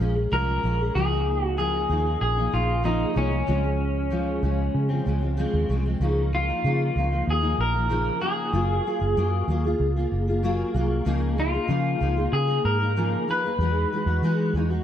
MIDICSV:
0, 0, Header, 1, 4, 480
1, 0, Start_track
1, 0, Key_signature, -5, "major"
1, 0, Tempo, 632311
1, 722, Time_signature, 4, 2, 24, 8
1, 11263, End_track
2, 0, Start_track
2, 0, Title_t, "Clean electric guitar"
2, 0, Program_c, 0, 27
2, 249, Note_on_c, 0, 70, 95
2, 720, Note_off_c, 0, 70, 0
2, 723, Note_on_c, 0, 68, 104
2, 1103, Note_off_c, 0, 68, 0
2, 1103, Note_on_c, 0, 66, 104
2, 1191, Note_off_c, 0, 66, 0
2, 1200, Note_on_c, 0, 68, 94
2, 1651, Note_off_c, 0, 68, 0
2, 1680, Note_on_c, 0, 68, 96
2, 1926, Note_on_c, 0, 65, 80
2, 1928, Note_off_c, 0, 68, 0
2, 2162, Note_off_c, 0, 65, 0
2, 2165, Note_on_c, 0, 63, 87
2, 2406, Note_off_c, 0, 63, 0
2, 2409, Note_on_c, 0, 61, 76
2, 4055, Note_off_c, 0, 61, 0
2, 4818, Note_on_c, 0, 65, 82
2, 5499, Note_off_c, 0, 65, 0
2, 5545, Note_on_c, 0, 68, 95
2, 5757, Note_off_c, 0, 68, 0
2, 5774, Note_on_c, 0, 70, 111
2, 6233, Note_off_c, 0, 70, 0
2, 6236, Note_on_c, 0, 68, 91
2, 7168, Note_off_c, 0, 68, 0
2, 8651, Note_on_c, 0, 65, 79
2, 9362, Note_on_c, 0, 68, 93
2, 9387, Note_off_c, 0, 65, 0
2, 9601, Note_off_c, 0, 68, 0
2, 9604, Note_on_c, 0, 70, 102
2, 10097, Note_off_c, 0, 70, 0
2, 10101, Note_on_c, 0, 71, 91
2, 11020, Note_off_c, 0, 71, 0
2, 11263, End_track
3, 0, Start_track
3, 0, Title_t, "Steel-string acoustic guitar"
3, 0, Program_c, 1, 25
3, 0, Note_on_c, 1, 53, 69
3, 3, Note_on_c, 1, 56, 67
3, 11, Note_on_c, 1, 61, 70
3, 19, Note_on_c, 1, 68, 73
3, 105, Note_off_c, 1, 68, 0
3, 114, Note_on_c, 1, 68, 45
3, 118, Note_off_c, 1, 53, 0
3, 119, Note_off_c, 1, 61, 0
3, 123, Note_off_c, 1, 56, 0
3, 128, Note_on_c, 1, 61, 46
3, 140, Note_on_c, 1, 56, 44
3, 233, Note_on_c, 1, 46, 75
3, 237, Note_off_c, 1, 56, 0
3, 238, Note_off_c, 1, 68, 0
3, 241, Note_on_c, 1, 53, 77
3, 242, Note_off_c, 1, 61, 0
3, 246, Note_on_c, 1, 56, 82
3, 251, Note_on_c, 1, 61, 75
3, 253, Note_on_c, 1, 68, 89
3, 471, Note_off_c, 1, 53, 0
3, 476, Note_off_c, 1, 56, 0
3, 478, Note_off_c, 1, 46, 0
3, 480, Note_on_c, 1, 53, 67
3, 485, Note_on_c, 1, 56, 61
3, 487, Note_off_c, 1, 61, 0
3, 488, Note_off_c, 1, 68, 0
3, 496, Note_on_c, 1, 61, 67
3, 503, Note_on_c, 1, 68, 79
3, 599, Note_off_c, 1, 68, 0
3, 601, Note_off_c, 1, 53, 0
3, 604, Note_off_c, 1, 56, 0
3, 608, Note_on_c, 1, 68, 56
3, 609, Note_off_c, 1, 61, 0
3, 626, Note_on_c, 1, 61, 50
3, 632, Note_on_c, 1, 56, 43
3, 725, Note_off_c, 1, 68, 0
3, 726, Note_on_c, 1, 49, 68
3, 734, Note_off_c, 1, 61, 0
3, 735, Note_on_c, 1, 53, 79
3, 737, Note_off_c, 1, 56, 0
3, 740, Note_on_c, 1, 58, 80
3, 748, Note_on_c, 1, 63, 86
3, 837, Note_off_c, 1, 63, 0
3, 844, Note_off_c, 1, 49, 0
3, 846, Note_on_c, 1, 63, 56
3, 848, Note_off_c, 1, 53, 0
3, 849, Note_off_c, 1, 58, 0
3, 858, Note_on_c, 1, 58, 48
3, 871, Note_on_c, 1, 53, 44
3, 1193, Note_off_c, 1, 53, 0
3, 1195, Note_on_c, 1, 49, 76
3, 1201, Note_off_c, 1, 58, 0
3, 1202, Note_on_c, 1, 53, 68
3, 1204, Note_off_c, 1, 63, 0
3, 1210, Note_on_c, 1, 58, 78
3, 1215, Note_on_c, 1, 63, 84
3, 1428, Note_off_c, 1, 49, 0
3, 1434, Note_off_c, 1, 53, 0
3, 1437, Note_on_c, 1, 49, 63
3, 1442, Note_off_c, 1, 58, 0
3, 1443, Note_on_c, 1, 53, 65
3, 1448, Note_off_c, 1, 63, 0
3, 1451, Note_on_c, 1, 58, 61
3, 1458, Note_on_c, 1, 63, 72
3, 1792, Note_off_c, 1, 63, 0
3, 1799, Note_off_c, 1, 49, 0
3, 1801, Note_on_c, 1, 63, 60
3, 1803, Note_off_c, 1, 53, 0
3, 1807, Note_off_c, 1, 58, 0
3, 1814, Note_on_c, 1, 58, 51
3, 1828, Note_on_c, 1, 53, 43
3, 1909, Note_on_c, 1, 49, 58
3, 1914, Note_off_c, 1, 53, 0
3, 1920, Note_off_c, 1, 58, 0
3, 1922, Note_off_c, 1, 63, 0
3, 1923, Note_on_c, 1, 53, 65
3, 1929, Note_on_c, 1, 58, 63
3, 1937, Note_on_c, 1, 63, 63
3, 2138, Note_off_c, 1, 49, 0
3, 2145, Note_off_c, 1, 53, 0
3, 2147, Note_on_c, 1, 49, 82
3, 2154, Note_off_c, 1, 58, 0
3, 2154, Note_on_c, 1, 53, 84
3, 2161, Note_off_c, 1, 63, 0
3, 2163, Note_on_c, 1, 58, 79
3, 2170, Note_on_c, 1, 63, 81
3, 2371, Note_off_c, 1, 49, 0
3, 2380, Note_on_c, 1, 49, 67
3, 2388, Note_off_c, 1, 53, 0
3, 2393, Note_off_c, 1, 58, 0
3, 2397, Note_on_c, 1, 53, 70
3, 2399, Note_off_c, 1, 63, 0
3, 2402, Note_on_c, 1, 58, 70
3, 2408, Note_on_c, 1, 63, 70
3, 2495, Note_off_c, 1, 63, 0
3, 2504, Note_on_c, 1, 63, 53
3, 2509, Note_off_c, 1, 58, 0
3, 2511, Note_off_c, 1, 49, 0
3, 2518, Note_on_c, 1, 58, 50
3, 2520, Note_off_c, 1, 53, 0
3, 2528, Note_on_c, 1, 53, 43
3, 2626, Note_off_c, 1, 53, 0
3, 2631, Note_on_c, 1, 49, 80
3, 2633, Note_off_c, 1, 63, 0
3, 2636, Note_on_c, 1, 53, 76
3, 2637, Note_off_c, 1, 58, 0
3, 2640, Note_on_c, 1, 56, 87
3, 2643, Note_on_c, 1, 60, 82
3, 2752, Note_off_c, 1, 56, 0
3, 2757, Note_off_c, 1, 49, 0
3, 2759, Note_off_c, 1, 53, 0
3, 2761, Note_on_c, 1, 56, 51
3, 2762, Note_off_c, 1, 60, 0
3, 2775, Note_on_c, 1, 53, 46
3, 3116, Note_off_c, 1, 53, 0
3, 3116, Note_on_c, 1, 49, 84
3, 3122, Note_off_c, 1, 56, 0
3, 3125, Note_on_c, 1, 53, 90
3, 3131, Note_on_c, 1, 56, 82
3, 3352, Note_off_c, 1, 49, 0
3, 3359, Note_off_c, 1, 53, 0
3, 3361, Note_on_c, 1, 49, 68
3, 3367, Note_off_c, 1, 56, 0
3, 3369, Note_on_c, 1, 53, 66
3, 3376, Note_on_c, 1, 56, 76
3, 3711, Note_on_c, 1, 60, 69
3, 3719, Note_off_c, 1, 56, 0
3, 3721, Note_off_c, 1, 49, 0
3, 3725, Note_off_c, 1, 53, 0
3, 3728, Note_on_c, 1, 56, 52
3, 3738, Note_on_c, 1, 53, 52
3, 3837, Note_off_c, 1, 60, 0
3, 3839, Note_on_c, 1, 49, 69
3, 3841, Note_off_c, 1, 53, 0
3, 3845, Note_off_c, 1, 56, 0
3, 3850, Note_on_c, 1, 53, 69
3, 3859, Note_on_c, 1, 56, 66
3, 3863, Note_on_c, 1, 60, 69
3, 3945, Note_off_c, 1, 60, 0
3, 3954, Note_on_c, 1, 60, 56
3, 3961, Note_off_c, 1, 49, 0
3, 3961, Note_off_c, 1, 56, 0
3, 3966, Note_off_c, 1, 53, 0
3, 3970, Note_on_c, 1, 56, 45
3, 3979, Note_on_c, 1, 53, 45
3, 4072, Note_off_c, 1, 53, 0
3, 4077, Note_on_c, 1, 49, 87
3, 4078, Note_off_c, 1, 60, 0
3, 4081, Note_on_c, 1, 53, 97
3, 4082, Note_off_c, 1, 56, 0
3, 4091, Note_on_c, 1, 56, 83
3, 4096, Note_on_c, 1, 60, 91
3, 4311, Note_off_c, 1, 49, 0
3, 4318, Note_off_c, 1, 53, 0
3, 4320, Note_on_c, 1, 49, 71
3, 4322, Note_off_c, 1, 56, 0
3, 4327, Note_on_c, 1, 53, 73
3, 4329, Note_off_c, 1, 60, 0
3, 4331, Note_on_c, 1, 56, 68
3, 4342, Note_on_c, 1, 60, 81
3, 4437, Note_off_c, 1, 60, 0
3, 4441, Note_off_c, 1, 49, 0
3, 4444, Note_off_c, 1, 53, 0
3, 4446, Note_off_c, 1, 56, 0
3, 4446, Note_on_c, 1, 60, 63
3, 4459, Note_on_c, 1, 56, 54
3, 4471, Note_on_c, 1, 53, 51
3, 4560, Note_off_c, 1, 53, 0
3, 4563, Note_on_c, 1, 49, 92
3, 4564, Note_off_c, 1, 60, 0
3, 4569, Note_on_c, 1, 53, 89
3, 4571, Note_off_c, 1, 56, 0
3, 4574, Note_on_c, 1, 58, 80
3, 4581, Note_on_c, 1, 63, 86
3, 4795, Note_off_c, 1, 49, 0
3, 4803, Note_off_c, 1, 53, 0
3, 4804, Note_on_c, 1, 49, 63
3, 4808, Note_off_c, 1, 58, 0
3, 4811, Note_off_c, 1, 63, 0
3, 4820, Note_on_c, 1, 58, 54
3, 4827, Note_on_c, 1, 63, 60
3, 4912, Note_off_c, 1, 63, 0
3, 4921, Note_on_c, 1, 63, 55
3, 4923, Note_off_c, 1, 49, 0
3, 4928, Note_off_c, 1, 58, 0
3, 4937, Note_on_c, 1, 58, 46
3, 4953, Note_on_c, 1, 53, 41
3, 5042, Note_off_c, 1, 63, 0
3, 5044, Note_off_c, 1, 53, 0
3, 5045, Note_on_c, 1, 49, 74
3, 5049, Note_off_c, 1, 58, 0
3, 5053, Note_on_c, 1, 53, 71
3, 5059, Note_on_c, 1, 58, 77
3, 5063, Note_on_c, 1, 63, 83
3, 5271, Note_off_c, 1, 49, 0
3, 5281, Note_on_c, 1, 49, 54
3, 5285, Note_off_c, 1, 53, 0
3, 5291, Note_off_c, 1, 58, 0
3, 5292, Note_off_c, 1, 63, 0
3, 5294, Note_on_c, 1, 53, 55
3, 5300, Note_on_c, 1, 58, 60
3, 5311, Note_on_c, 1, 63, 66
3, 5385, Note_off_c, 1, 63, 0
3, 5394, Note_on_c, 1, 63, 52
3, 5401, Note_off_c, 1, 49, 0
3, 5401, Note_off_c, 1, 58, 0
3, 5408, Note_off_c, 1, 53, 0
3, 5410, Note_on_c, 1, 58, 50
3, 5422, Note_on_c, 1, 53, 46
3, 5621, Note_off_c, 1, 63, 0
3, 5631, Note_on_c, 1, 63, 59
3, 5639, Note_off_c, 1, 58, 0
3, 5648, Note_off_c, 1, 53, 0
3, 5648, Note_on_c, 1, 58, 52
3, 5657, Note_on_c, 1, 53, 45
3, 5861, Note_off_c, 1, 63, 0
3, 5870, Note_on_c, 1, 63, 52
3, 5876, Note_off_c, 1, 58, 0
3, 5886, Note_on_c, 1, 58, 45
3, 5889, Note_off_c, 1, 53, 0
3, 5899, Note_on_c, 1, 53, 44
3, 5985, Note_off_c, 1, 53, 0
3, 5992, Note_on_c, 1, 49, 73
3, 5993, Note_off_c, 1, 58, 0
3, 5994, Note_on_c, 1, 53, 76
3, 5996, Note_off_c, 1, 63, 0
3, 6002, Note_on_c, 1, 58, 87
3, 6007, Note_on_c, 1, 63, 85
3, 6216, Note_off_c, 1, 49, 0
3, 6224, Note_off_c, 1, 53, 0
3, 6225, Note_on_c, 1, 49, 66
3, 6231, Note_off_c, 1, 58, 0
3, 6233, Note_on_c, 1, 53, 66
3, 6239, Note_off_c, 1, 63, 0
3, 6240, Note_on_c, 1, 58, 63
3, 6248, Note_on_c, 1, 63, 66
3, 6470, Note_off_c, 1, 49, 0
3, 6471, Note_off_c, 1, 58, 0
3, 6473, Note_on_c, 1, 54, 71
3, 6477, Note_off_c, 1, 53, 0
3, 6480, Note_on_c, 1, 58, 75
3, 6483, Note_on_c, 1, 65, 80
3, 6485, Note_off_c, 1, 63, 0
3, 6488, Note_on_c, 1, 68, 75
3, 6708, Note_off_c, 1, 54, 0
3, 6717, Note_on_c, 1, 54, 51
3, 6719, Note_off_c, 1, 58, 0
3, 6722, Note_off_c, 1, 65, 0
3, 6725, Note_off_c, 1, 68, 0
3, 6728, Note_on_c, 1, 58, 54
3, 6735, Note_on_c, 1, 65, 66
3, 6741, Note_on_c, 1, 68, 64
3, 6818, Note_off_c, 1, 68, 0
3, 6827, Note_on_c, 1, 68, 58
3, 6830, Note_off_c, 1, 65, 0
3, 6839, Note_off_c, 1, 54, 0
3, 6839, Note_on_c, 1, 65, 52
3, 6841, Note_off_c, 1, 58, 0
3, 6850, Note_on_c, 1, 58, 45
3, 6952, Note_off_c, 1, 58, 0
3, 6954, Note_off_c, 1, 68, 0
3, 6960, Note_off_c, 1, 65, 0
3, 6960, Note_on_c, 1, 54, 88
3, 6962, Note_on_c, 1, 58, 81
3, 6971, Note_on_c, 1, 65, 82
3, 6974, Note_on_c, 1, 68, 91
3, 7186, Note_off_c, 1, 54, 0
3, 7195, Note_on_c, 1, 54, 72
3, 7199, Note_off_c, 1, 58, 0
3, 7203, Note_off_c, 1, 65, 0
3, 7207, Note_off_c, 1, 68, 0
3, 7208, Note_on_c, 1, 58, 66
3, 7212, Note_on_c, 1, 65, 74
3, 7221, Note_on_c, 1, 68, 73
3, 7309, Note_off_c, 1, 68, 0
3, 7318, Note_off_c, 1, 54, 0
3, 7319, Note_on_c, 1, 68, 60
3, 7325, Note_off_c, 1, 58, 0
3, 7327, Note_off_c, 1, 65, 0
3, 7336, Note_on_c, 1, 65, 61
3, 7344, Note_on_c, 1, 58, 50
3, 7553, Note_off_c, 1, 68, 0
3, 7561, Note_off_c, 1, 65, 0
3, 7562, Note_on_c, 1, 68, 62
3, 7570, Note_on_c, 1, 65, 60
3, 7573, Note_off_c, 1, 58, 0
3, 7584, Note_on_c, 1, 58, 52
3, 7792, Note_off_c, 1, 68, 0
3, 7801, Note_on_c, 1, 68, 63
3, 7802, Note_off_c, 1, 65, 0
3, 7811, Note_on_c, 1, 65, 57
3, 7812, Note_off_c, 1, 58, 0
3, 7826, Note_on_c, 1, 58, 53
3, 7915, Note_off_c, 1, 58, 0
3, 7918, Note_on_c, 1, 54, 89
3, 7921, Note_off_c, 1, 65, 0
3, 7921, Note_off_c, 1, 68, 0
3, 7924, Note_on_c, 1, 58, 93
3, 7930, Note_on_c, 1, 65, 92
3, 7931, Note_on_c, 1, 68, 97
3, 8147, Note_off_c, 1, 54, 0
3, 8156, Note_on_c, 1, 54, 75
3, 8157, Note_off_c, 1, 58, 0
3, 8166, Note_off_c, 1, 65, 0
3, 8166, Note_off_c, 1, 68, 0
3, 8166, Note_on_c, 1, 58, 73
3, 8176, Note_on_c, 1, 65, 79
3, 8181, Note_on_c, 1, 68, 81
3, 8389, Note_on_c, 1, 49, 88
3, 8391, Note_off_c, 1, 58, 0
3, 8392, Note_off_c, 1, 54, 0
3, 8395, Note_on_c, 1, 53, 86
3, 8398, Note_off_c, 1, 68, 0
3, 8400, Note_off_c, 1, 65, 0
3, 8400, Note_on_c, 1, 58, 102
3, 8403, Note_on_c, 1, 63, 90
3, 8407, Note_on_c, 1, 68, 97
3, 8622, Note_off_c, 1, 53, 0
3, 8631, Note_on_c, 1, 53, 59
3, 8632, Note_off_c, 1, 58, 0
3, 8635, Note_off_c, 1, 49, 0
3, 8638, Note_off_c, 1, 63, 0
3, 8641, Note_on_c, 1, 58, 63
3, 8644, Note_off_c, 1, 68, 0
3, 8647, Note_on_c, 1, 63, 62
3, 8658, Note_on_c, 1, 68, 59
3, 8743, Note_off_c, 1, 68, 0
3, 8752, Note_on_c, 1, 68, 51
3, 8754, Note_off_c, 1, 63, 0
3, 8756, Note_off_c, 1, 53, 0
3, 8761, Note_off_c, 1, 58, 0
3, 8763, Note_on_c, 1, 63, 46
3, 8772, Note_on_c, 1, 58, 47
3, 8865, Note_on_c, 1, 49, 82
3, 8872, Note_off_c, 1, 58, 0
3, 8872, Note_on_c, 1, 53, 80
3, 8873, Note_off_c, 1, 63, 0
3, 8876, Note_off_c, 1, 68, 0
3, 8881, Note_on_c, 1, 58, 77
3, 8882, Note_on_c, 1, 63, 82
3, 8887, Note_on_c, 1, 68, 84
3, 9103, Note_off_c, 1, 53, 0
3, 9112, Note_on_c, 1, 53, 67
3, 9113, Note_off_c, 1, 49, 0
3, 9114, Note_off_c, 1, 58, 0
3, 9119, Note_off_c, 1, 63, 0
3, 9123, Note_on_c, 1, 58, 62
3, 9124, Note_off_c, 1, 68, 0
3, 9128, Note_on_c, 1, 63, 59
3, 9138, Note_on_c, 1, 68, 61
3, 9227, Note_off_c, 1, 68, 0
3, 9236, Note_off_c, 1, 53, 0
3, 9236, Note_on_c, 1, 68, 61
3, 9241, Note_off_c, 1, 63, 0
3, 9242, Note_off_c, 1, 58, 0
3, 9250, Note_on_c, 1, 63, 54
3, 9260, Note_on_c, 1, 58, 45
3, 9459, Note_off_c, 1, 68, 0
3, 9468, Note_on_c, 1, 68, 63
3, 9471, Note_off_c, 1, 63, 0
3, 9480, Note_on_c, 1, 63, 56
3, 9483, Note_off_c, 1, 58, 0
3, 9492, Note_on_c, 1, 58, 46
3, 9704, Note_off_c, 1, 68, 0
3, 9713, Note_on_c, 1, 68, 51
3, 9720, Note_off_c, 1, 63, 0
3, 9726, Note_off_c, 1, 58, 0
3, 9731, Note_on_c, 1, 63, 55
3, 9740, Note_on_c, 1, 58, 48
3, 9837, Note_off_c, 1, 68, 0
3, 9841, Note_off_c, 1, 58, 0
3, 9842, Note_on_c, 1, 49, 79
3, 9846, Note_off_c, 1, 63, 0
3, 9846, Note_on_c, 1, 53, 85
3, 9850, Note_on_c, 1, 58, 79
3, 9856, Note_on_c, 1, 63, 84
3, 9858, Note_on_c, 1, 68, 85
3, 10069, Note_off_c, 1, 53, 0
3, 10078, Note_off_c, 1, 58, 0
3, 10078, Note_on_c, 1, 53, 65
3, 10081, Note_off_c, 1, 49, 0
3, 10087, Note_on_c, 1, 58, 69
3, 10088, Note_off_c, 1, 63, 0
3, 10089, Note_off_c, 1, 68, 0
3, 10097, Note_on_c, 1, 63, 76
3, 10102, Note_on_c, 1, 68, 83
3, 10192, Note_off_c, 1, 68, 0
3, 10199, Note_off_c, 1, 53, 0
3, 10201, Note_on_c, 1, 68, 52
3, 10204, Note_off_c, 1, 58, 0
3, 10209, Note_off_c, 1, 63, 0
3, 10217, Note_on_c, 1, 63, 46
3, 10225, Note_on_c, 1, 58, 42
3, 10321, Note_off_c, 1, 68, 0
3, 10328, Note_on_c, 1, 52, 84
3, 10329, Note_off_c, 1, 63, 0
3, 10331, Note_off_c, 1, 58, 0
3, 10334, Note_on_c, 1, 56, 75
3, 10342, Note_on_c, 1, 63, 80
3, 10346, Note_on_c, 1, 66, 83
3, 10560, Note_off_c, 1, 52, 0
3, 10567, Note_off_c, 1, 56, 0
3, 10570, Note_on_c, 1, 52, 57
3, 10571, Note_off_c, 1, 63, 0
3, 10573, Note_off_c, 1, 66, 0
3, 10579, Note_on_c, 1, 56, 65
3, 10590, Note_on_c, 1, 63, 63
3, 10596, Note_on_c, 1, 66, 64
3, 10670, Note_off_c, 1, 66, 0
3, 10679, Note_off_c, 1, 63, 0
3, 10679, Note_on_c, 1, 66, 67
3, 10685, Note_off_c, 1, 52, 0
3, 10688, Note_on_c, 1, 63, 55
3, 10689, Note_off_c, 1, 56, 0
3, 10702, Note_on_c, 1, 56, 50
3, 10799, Note_off_c, 1, 66, 0
3, 10801, Note_off_c, 1, 56, 0
3, 10801, Note_on_c, 1, 52, 77
3, 10804, Note_off_c, 1, 63, 0
3, 10810, Note_on_c, 1, 56, 89
3, 10813, Note_on_c, 1, 63, 86
3, 10822, Note_on_c, 1, 66, 94
3, 11032, Note_off_c, 1, 52, 0
3, 11041, Note_on_c, 1, 52, 61
3, 11043, Note_off_c, 1, 56, 0
3, 11046, Note_off_c, 1, 63, 0
3, 11051, Note_off_c, 1, 66, 0
3, 11052, Note_on_c, 1, 56, 72
3, 11060, Note_on_c, 1, 63, 70
3, 11068, Note_on_c, 1, 66, 74
3, 11149, Note_off_c, 1, 66, 0
3, 11158, Note_on_c, 1, 66, 61
3, 11160, Note_off_c, 1, 52, 0
3, 11163, Note_off_c, 1, 63, 0
3, 11166, Note_off_c, 1, 56, 0
3, 11172, Note_on_c, 1, 63, 58
3, 11185, Note_on_c, 1, 56, 50
3, 11263, Note_off_c, 1, 56, 0
3, 11263, Note_off_c, 1, 63, 0
3, 11263, Note_off_c, 1, 66, 0
3, 11263, End_track
4, 0, Start_track
4, 0, Title_t, "Fingered electric bass"
4, 0, Program_c, 2, 33
4, 0, Note_on_c, 2, 34, 88
4, 192, Note_off_c, 2, 34, 0
4, 242, Note_on_c, 2, 36, 94
4, 434, Note_off_c, 2, 36, 0
4, 483, Note_on_c, 2, 34, 84
4, 675, Note_off_c, 2, 34, 0
4, 723, Note_on_c, 2, 37, 100
4, 1412, Note_off_c, 2, 37, 0
4, 1439, Note_on_c, 2, 39, 80
4, 1632, Note_off_c, 2, 39, 0
4, 1680, Note_on_c, 2, 34, 98
4, 1873, Note_off_c, 2, 34, 0
4, 1924, Note_on_c, 2, 34, 95
4, 2307, Note_off_c, 2, 34, 0
4, 2399, Note_on_c, 2, 36, 93
4, 2592, Note_off_c, 2, 36, 0
4, 2645, Note_on_c, 2, 37, 92
4, 3333, Note_off_c, 2, 37, 0
4, 3361, Note_on_c, 2, 37, 83
4, 3553, Note_off_c, 2, 37, 0
4, 3602, Note_on_c, 2, 49, 101
4, 3794, Note_off_c, 2, 49, 0
4, 3844, Note_on_c, 2, 37, 77
4, 4131, Note_off_c, 2, 37, 0
4, 4202, Note_on_c, 2, 39, 82
4, 4298, Note_off_c, 2, 39, 0
4, 4321, Note_on_c, 2, 36, 86
4, 4513, Note_off_c, 2, 36, 0
4, 4554, Note_on_c, 2, 37, 96
4, 4941, Note_off_c, 2, 37, 0
4, 5043, Note_on_c, 2, 49, 94
4, 5234, Note_off_c, 2, 49, 0
4, 5281, Note_on_c, 2, 37, 74
4, 5473, Note_off_c, 2, 37, 0
4, 5522, Note_on_c, 2, 39, 96
4, 5714, Note_off_c, 2, 39, 0
4, 5757, Note_on_c, 2, 34, 86
4, 6143, Note_off_c, 2, 34, 0
4, 6478, Note_on_c, 2, 30, 94
4, 6671, Note_off_c, 2, 30, 0
4, 6842, Note_on_c, 2, 30, 89
4, 6938, Note_off_c, 2, 30, 0
4, 6962, Note_on_c, 2, 42, 106
4, 7154, Note_off_c, 2, 42, 0
4, 7194, Note_on_c, 2, 39, 84
4, 7389, Note_off_c, 2, 39, 0
4, 7436, Note_on_c, 2, 37, 91
4, 7630, Note_off_c, 2, 37, 0
4, 7680, Note_on_c, 2, 30, 84
4, 8064, Note_off_c, 2, 30, 0
4, 8156, Note_on_c, 2, 36, 85
4, 8350, Note_off_c, 2, 36, 0
4, 8395, Note_on_c, 2, 37, 104
4, 8781, Note_off_c, 2, 37, 0
4, 8871, Note_on_c, 2, 49, 108
4, 9067, Note_off_c, 2, 49, 0
4, 9117, Note_on_c, 2, 37, 85
4, 9310, Note_off_c, 2, 37, 0
4, 9356, Note_on_c, 2, 49, 108
4, 9550, Note_off_c, 2, 49, 0
4, 9600, Note_on_c, 2, 44, 91
4, 9984, Note_off_c, 2, 44, 0
4, 10313, Note_on_c, 2, 40, 100
4, 10508, Note_off_c, 2, 40, 0
4, 10674, Note_on_c, 2, 40, 90
4, 10772, Note_off_c, 2, 40, 0
4, 10795, Note_on_c, 2, 52, 93
4, 11033, Note_on_c, 2, 40, 76
4, 11044, Note_off_c, 2, 52, 0
4, 11227, Note_off_c, 2, 40, 0
4, 11263, End_track
0, 0, End_of_file